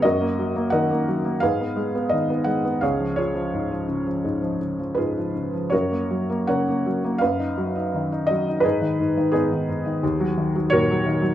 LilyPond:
<<
  \new Staff \with { instrumentName = "Felt piano" } { \time 4/4 \key gis \dorian \tempo 4 = 85 << { dis''4 fis''4 eis''4 dis''8 fis''8 | eis''8 cis''4 r4. b'4 | cis''4 fis''4 eis''4. dis''8 | b'4 gis'2 cis''4 | } \\ { <fis' ais'>4 <ais' dis''>4 <gis' b'>2 | <gis' cis''>8 <eis' gis'>2 r8 <eis' gis'>4 | <fis' ais'>4 <ais' cis''>4 b'2 | <dis' gis'>4 <b dis'>2 <fis' ais'>4 | } >> }
  \new Staff \with { instrumentName = "Felt piano" } { \clef bass \time 4/4 \key gis \dorian fis,16 ais16 fis16 ais16 dis16 ais16 fis16 ais16 gis,16 b16 gis16 b16 dis16 b16 gis16 b16 | cis,16 eis16 cis16 eis16 gis,16 eis16 cis16 eis16 gis,16 eis16 cis16 eis16 gis,16 eis16 cis16 eis16 | fis,16 ais16 fis16 ais16 cis16 ais16 fis16 ais16 fis,16 dis'16 fis16 dis'16 dis16 dis'16 fis16 dis'16 | gis,16 dis16 gis,16 dis16 gis,16 dis16 gis,16 dis16 dis,16 fis16 dis16 fis16 ais,16 fis16 dis16 fis16 | }
>>